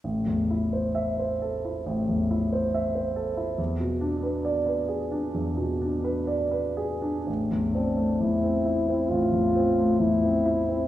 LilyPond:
<<
  \new Staff \with { instrumentName = "French horn" } { \time 4/4 \key a \minor \tempo 4 = 66 r1 | r1 | r8 d'8 e'4 f'4 e'4 | }
  \new Staff \with { instrumentName = "Grand piano" } { \time 4/4 \key a \minor a,,16 e,16 e'16 c''16 e''16 c''16 a'16 e'16 a,,16 e,16 e'16 c''16 e''16 c''16 a'16 e'16 | e,16 b,16 d'16 b'16 d''16 b'16 gis'16 d'16 e,16 b,16 d'16 b'16 d''16 b'16 gis'16 d'16 | a,,16 e,16 c'16 a16 e,16 c'16 e'16 c'16 a,,16 e,16 c'16 a16 e,16 c'16 e'16 c'16 | }
>>